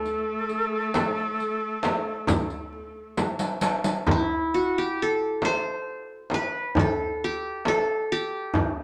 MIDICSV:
0, 0, Header, 1, 7, 480
1, 0, Start_track
1, 0, Key_signature, 0, "minor"
1, 0, Tempo, 894188
1, 2192, Time_signature, 10, 3, 24, 8
1, 4743, End_track
2, 0, Start_track
2, 0, Title_t, "Ney"
2, 0, Program_c, 0, 77
2, 0, Note_on_c, 0, 69, 78
2, 1708, Note_off_c, 0, 69, 0
2, 4743, End_track
3, 0, Start_track
3, 0, Title_t, "Qanun"
3, 0, Program_c, 1, 107
3, 0, Note_on_c, 1, 69, 74
3, 0, Note_on_c, 1, 71, 83
3, 164, Note_off_c, 1, 71, 0
3, 1700, Note_off_c, 1, 69, 0
3, 2208, Note_on_c, 1, 64, 83
3, 2439, Note_on_c, 1, 66, 73
3, 2567, Note_on_c, 1, 67, 83
3, 2599, Note_off_c, 1, 66, 0
3, 2696, Note_on_c, 1, 69, 80
3, 2925, Note_on_c, 1, 72, 91
3, 2955, Note_off_c, 1, 64, 0
3, 3241, Note_off_c, 1, 67, 0
3, 3325, Note_off_c, 1, 69, 0
3, 3404, Note_on_c, 1, 71, 86
3, 3436, Note_off_c, 1, 72, 0
3, 3647, Note_on_c, 1, 69, 81
3, 3887, Note_on_c, 1, 67, 85
3, 3991, Note_off_c, 1, 71, 0
3, 4121, Note_off_c, 1, 69, 0
3, 4123, Note_on_c, 1, 69, 87
3, 4357, Note_off_c, 1, 67, 0
3, 4359, Note_on_c, 1, 67, 81
3, 4743, Note_off_c, 1, 67, 0
3, 4743, Note_off_c, 1, 69, 0
3, 4743, End_track
4, 0, Start_track
4, 0, Title_t, "Cello"
4, 0, Program_c, 2, 42
4, 0, Note_on_c, 2, 57, 79
4, 1714, Note_off_c, 2, 57, 0
4, 4743, End_track
5, 0, Start_track
5, 0, Title_t, "Darbuka"
5, 27, Note_on_c, 9, 62, 23
5, 80, Note_off_c, 9, 62, 0
5, 273, Note_on_c, 9, 62, 23
5, 326, Note_off_c, 9, 62, 0
5, 506, Note_on_c, 9, 63, 74
5, 559, Note_off_c, 9, 63, 0
5, 982, Note_on_c, 9, 63, 71
5, 1036, Note_off_c, 9, 63, 0
5, 1220, Note_on_c, 9, 64, 77
5, 1274, Note_off_c, 9, 64, 0
5, 1464, Note_on_c, 9, 62, 26
5, 1517, Note_off_c, 9, 62, 0
5, 1704, Note_on_c, 9, 63, 56
5, 1757, Note_off_c, 9, 63, 0
5, 1825, Note_on_c, 9, 62, 67
5, 1879, Note_off_c, 9, 62, 0
5, 1945, Note_on_c, 9, 63, 75
5, 1998, Note_off_c, 9, 63, 0
5, 2064, Note_on_c, 9, 62, 74
5, 2117, Note_off_c, 9, 62, 0
5, 2183, Note_on_c, 9, 64, 92
5, 2236, Note_off_c, 9, 64, 0
5, 2909, Note_on_c, 9, 63, 67
5, 2962, Note_off_c, 9, 63, 0
5, 3382, Note_on_c, 9, 63, 64
5, 3435, Note_off_c, 9, 63, 0
5, 3624, Note_on_c, 9, 64, 89
5, 3678, Note_off_c, 9, 64, 0
5, 4108, Note_on_c, 9, 63, 67
5, 4162, Note_off_c, 9, 63, 0
5, 4582, Note_on_c, 9, 64, 84
5, 4636, Note_off_c, 9, 64, 0
5, 4743, End_track
6, 0, Start_track
6, 0, Title_t, "Frame drum"
6, 512, Note_on_c, 9, 64, 69
6, 565, Note_off_c, 9, 64, 0
6, 993, Note_on_c, 9, 64, 66
6, 1046, Note_off_c, 9, 64, 0
6, 1224, Note_on_c, 9, 64, 88
6, 1278, Note_off_c, 9, 64, 0
6, 1705, Note_on_c, 9, 64, 70
6, 1759, Note_off_c, 9, 64, 0
6, 2186, Note_on_c, 9, 64, 91
6, 2239, Note_off_c, 9, 64, 0
6, 2909, Note_on_c, 9, 64, 64
6, 2963, Note_off_c, 9, 64, 0
6, 3390, Note_on_c, 9, 64, 60
6, 3443, Note_off_c, 9, 64, 0
6, 3633, Note_on_c, 9, 64, 86
6, 3686, Note_off_c, 9, 64, 0
6, 4110, Note_on_c, 9, 64, 67
6, 4163, Note_off_c, 9, 64, 0
6, 4589, Note_on_c, 9, 64, 75
6, 4643, Note_off_c, 9, 64, 0
6, 4743, End_track
7, 0, Start_track
7, 0, Title_t, "Riq"
7, 30, Note_on_c, 9, 54, 18
7, 84, Note_off_c, 9, 54, 0
7, 265, Note_on_c, 9, 54, 17
7, 318, Note_off_c, 9, 54, 0
7, 506, Note_on_c, 9, 54, 44
7, 560, Note_off_c, 9, 54, 0
7, 752, Note_on_c, 9, 54, 19
7, 805, Note_off_c, 9, 54, 0
7, 986, Note_on_c, 9, 54, 41
7, 1039, Note_off_c, 9, 54, 0
7, 1226, Note_on_c, 9, 54, 70
7, 1280, Note_off_c, 9, 54, 0
7, 1342, Note_on_c, 9, 54, 18
7, 1396, Note_off_c, 9, 54, 0
7, 1704, Note_on_c, 9, 54, 57
7, 1758, Note_off_c, 9, 54, 0
7, 1820, Note_on_c, 9, 54, 63
7, 1874, Note_off_c, 9, 54, 0
7, 1939, Note_on_c, 9, 54, 78
7, 1993, Note_off_c, 9, 54, 0
7, 2063, Note_on_c, 9, 54, 79
7, 2116, Note_off_c, 9, 54, 0
7, 4743, End_track
0, 0, End_of_file